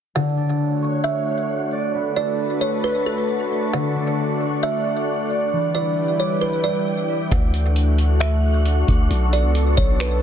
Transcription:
0.15 1.99 D3 loud
0.15 5.48 A3 medium
0.15 7.27 D4 medium
0.15 5.48 D4 medium
0.15 5.48 F#4 medium
0.15 5.48 A4 medium
0.15 1.92 C#5 medium
0.15 1.92 F#5 medium
0.15 0.57 F#5 loud
0.37 2.16 D4 medium
0.82 2.08 C#6 medium
1.04 1.90 E5 medium
1.72 2.67 D5 medium
1.94 5.05 B3 medium
1.94 3.72 B4 medium
1.94 3.72 A5 medium
1.94 5.49 C#6 medium
2.16 3.95 D4 medium
2.16 2.59 D5 medium
2.61 2.82 C#5 medium
2.61 3.79 C#5 medium
2.84 3.05 B4 medium
3.06 3.69 A4 medium
3.51 5.56 B4 medium
3.73 5.57 D3 loud
3.73 7.28 D5 medium
3.73 5.50 F#5 medium
3.73 4.15 F#5 loud
3.95 6.75 D4 medium
4.41 5.67 C#6 medium
4.63 5.48 E5 medium
5.30 7.15 D5 medium
5.52 7.36 E3 medium
5.52 7.30 G3 medium
5.52 7.30 E4 medium
5.52 7.30 B4 medium
5.52 7.29 D5 medium
5.52 7.29 G5 medium
5.75 8.36 E4 medium
5.75 6.17 D5 medium
6.19 6.41 C#5 medium
6.19 7.41 D6 medium
6.41 6.63 B4 medium
6.64 7.27 D5 medium
7.09 8.82 E5 medium
7.31 8.84 D2 loud
7.31 9.09 A3 medium
7.31 10.22 D4 medium
7.31 10.22 F#4 medium
7.31 10.22 A4 medium
7.31 9.09 F#5 medium
7.31 7.74 F#5 loud
7.31 10.22 C#6 medium
7.31 kick loud
7.31 closed hi-hat medium
7.54 closed hi-hat medium
7.76 closed hi-hat medium
7.98 closed hi-hat medium
8.20 9.06 E5 medium
8.20 finger snap loud
8.20 closed hi-hat medium
8.65 closed hi-hat medium
8.88 9.10 D2 loud
8.88 kick loud
8.88 closed hi-hat medium
9.10 9.46 B1 loud
9.10 10.22 B3 medium
9.10 10.22 A5 medium
9.10 closed hi-hat medium
9.33 9.75 D5 medium
9.33 closed hi-hat medium
9.44 9.76 C#2 medium
9.55 closed hi-hat medium
9.77 10.21 B1 loud
9.77 9.99 C#5 medium
9.77 kick medium
9.77 closed hi-hat medium
10.00 10.22 B4 medium
10.00 finger snap loud
10.00 closed hi-hat medium

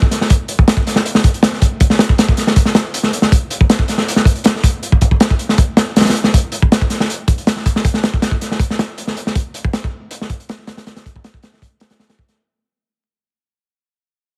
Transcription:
0.02 kick loud
0.11 snare soft
0.11 closed hi-hat medium
0.21 snare soft
0.30 kick loud
0.30 closed hi-hat medium
0.48 closed hi-hat medium
0.59 kick loud
0.68 snare loud
0.68 closed hi-hat loud
0.77 kick loud
0.87 snare soft
0.87 closed hi-hat medium
0.96 snare medium
1.06 closed hi-hat medium
1.15 snare medium
1.24 kick medium
1.24 closed hi-hat medium
1.34 closed hi-hat soft
1.43 snare loud
1.43 closed hi-hat medium
1.53 snare soft
1.62 kick loud
1.62 closed hi-hat medium
1.80 kick loud
1.80 closed hi-hat medium
1.90 snare medium
1.99 snare loud
1.99 closed hi-hat medium
2.09 kick loud
2.18 snare loud
2.18 closed hi-hat medium
2.29 kick loud
2.37 snare soft
2.37 closed hi-hat medium
2.47 snare medium
2.56 kick loud
2.56 closed hi-hat medium
2.65 snare soft
2.75 snare loud
2.75 closed hi-hat medium
2.94 closed hi-hat medium
3.03 snare soft
3.13 closed hi-hat medium
3.22 snare medium
3.32 kick loud
3.32 closed hi-hat loud
3.50 closed hi-hat medium
3.61 kick loud
3.70 snare loud
3.70 closed hi-hat medium
3.79 kick medium
3.88 snare soft
3.88 closed hi-hat medium
3.98 snare medium
4.08 closed hi-hat medium
4.16 snare medium
4.25 kick loud
4.25 closed hi-hat medium
4.35 closed hi-hat soft
4.44 snare loud
4.44 closed hi-hat medium
4.56 snare soft
4.64 kick loud
4.64 closed hi-hat medium
4.83 closed hi-hat medium
4.92 kick medium
5.01 kick loud
5.01 closed hi-hat medium
5.11 kick medium
5.20 snare loud
5.20 closed hi-hat medium
5.30 kick medium
5.39 closed hi-hat medium
5.49 snare soft
5.58 kick loud
5.58 closed hi-hat medium
5.77 snare loud
5.77 closed hi-hat medium
5.96 snare medium
5.96 closed hi-hat medium
6.01 snare medium
6.01 closed hi-hat medium
6.05 snare medium
6.05 closed hi-hat medium
6.09 snare medium
6.09 closed hi-hat medium
6.15 closed hi-hat medium
6.24 snare medium
6.34 kick loud
6.34 closed hi-hat loud
6.52 closed hi-hat medium
6.62 kick medium
6.72 snare loud
6.72 closed hi-hat medium
6.81 kick medium
6.90 snare soft
6.90 closed hi-hat medium
7.00 snare medium
7.10 closed hi-hat medium
7.28 kick loud
7.28 closed hi-hat medium
7.38 closed hi-hat soft
7.47 snare loud
7.47 closed hi-hat medium
7.56 snare soft
7.66 kick medium
7.66 closed hi-hat medium
7.76 snare medium
7.85 kick loud
7.85 closed hi-hat medium
7.94 snare medium
8.03 snare loud
8.03 closed hi-hat medium
8.14 kick loud
8.22 snare loud
8.22 closed hi-hat medium
8.31 kick medium
8.41 snare soft
8.41 closed hi-hat medium
8.51 snare soft
8.60 kick loud
8.60 closed hi-hat medium
8.70 snare medium
8.79 snare loud
8.79 closed hi-hat medium
8.98 closed hi-hat medium
9.07 snare soft
9.17 closed hi-hat medium
9.27 snare medium
9.35 kick loud
9.35 closed hi-hat medium
9.54 closed hi-hat medium
9.65 kick loud
9.73 snare loud
9.73 closed hi-hat medium
9.84 kick loud
10.11 closed hi-hat loud
10.21 snare medium
10.30 kick medium
10.30 closed hi-hat medium
10.40 closed hi-hat soft
10.49 snare loud
10.49 closed hi-hat medium
10.59 snare soft
10.67 snare loud
10.67 closed hi-hat medium
10.77 snare loud
10.77 closed hi-hat medium
10.87 snare loud
10.87 closed hi-hat medium
10.96 snare loud
10.96 closed hi-hat medium
11.06 kick loud
11.06 closed hi-hat medium
11.16 kick loud
11.24 snare loud
11.24 closed hi-hat medium
11.34 kick loud
11.43 snare loud
11.43 closed hi-hat medium
11.54 snare medium
11.62 kick loud
11.62 closed hi-hat medium
11.80 snare loud
11.80 closed hi-hat medium
11.90 snare loud
11.90 closed hi-hat medium
11.99 snare loud
11.99 closed hi-hat medium
12.09 snare loud
12.09 closed hi-hat medium
12.19 kick loud
12.28 snare soft
12.28 closed hi-hat medium

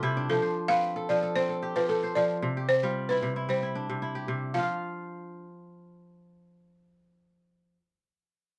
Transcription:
0.00 0.34 C3 medium
0.00 0.34 G3 medium
0.00 0.35 E4 medium
0.00 1.41 F4 medium
0.00 1.18 G4 medium
0.00 0.96 A4 medium
0.00 0.42 C5 medium
0.00 0.33 D5 medium
0.17 1.85 D4 medium
0.29 1.09 F3 medium
0.29 0.71 A4 medium
0.42 1.61 C5 medium
0.68 1.35 C4 medium
0.68 1.42 B4 medium
0.68 1.09 F5 loud
0.96 1.22 A4 medium
1.09 1.75 F3 medium
1.09 1.21 D5 medium
1.23 1.49 A4 medium
1.36 3.16 C4 medium
1.36 1.73 C5 loud
1.49 1.89 A4 medium
1.63 2.57 G4 medium
1.76 2.15 F3 medium
1.76 1.89 B4 medium
1.89 2.01 A4 medium
1.89 3.21 A4 medium
2.03 3.22 C5 medium
2.15 2.46 F3 medium
2.15 2.70 D5 medium
2.42 3.21 C3 medium
2.57 3.98 G4 medium
2.69 3.09 C5 medium
2.83 3.47 G3 medium
2.83 3.42 F4 medium
3.09 3.36 E4 medium
3.09 3.49 B4 medium
3.22 3.88 C3 medium
3.36 3.62 E4 medium
3.49 4.58 G3 medium
3.49 4.24 C5 medium
3.63 4.02 E4 medium
3.75 5.43 D4 medium
3.90 4.27 C3 medium
4.02 4.60 E4 medium
4.15 5.56 G4 medium
4.28 4.58 C3 medium
4.54 7.76 F3 medium
4.54 7.72 F5 medium
4.58 7.80 F4 medium
4.63 7.84 F5 medium

